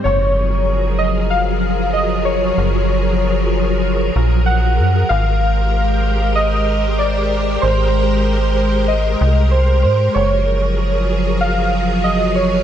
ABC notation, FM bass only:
X:1
M:4/4
L:1/8
Q:1/4=95
K:F#
V:1 name="FM bass" clef=bass
F,,,8 | F,,,4- F,,, A,,,2 F,, | G,,,8 | G,,,4- G,,, ^B,,,2 G,, |
F,,,8 |]